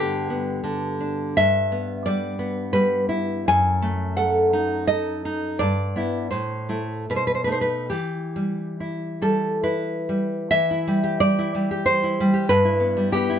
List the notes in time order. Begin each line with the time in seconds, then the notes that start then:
Already playing: G2 D3 B3 G4
0.30 B3
0.64 D3
1.01 D4
1.37 G2 E5
1.72 B3
2.06 G3 D5
2.39 B3
2.73 G3 B4
3.09 E4
3.48 F#2 G#5
3.82 A3
4.17 A4 F#5
4.53 D#4
4.87 A4 D#5
5.25 D#4
5.59 G2 D5
5.96 B3 E4
6.31 A2 C5
6.69 A3 E4
7.10 B2 B4
7.16 C5
7.27 B4
7.35 C5
7.44 A3 D#4 B4
7.52 C5
7.61 B4
7.90 E3 G4
8.36 G3
8.80 E4
9.22 G3 A4
9.63 E4 B4
10.09 G3
10.51 E3 E5
10.71 E4
10.87 G3
11.04 G4
11.20 G3 D5
11.39 E4
11.55 G3
11.71 G4
11.86 C5
12.04 E4
12.20 G3
12.34 G4
12.49 G2 B4
12.65 E4
12.80 B3
12.97 G3
13.12 B3 G4
13.30 E4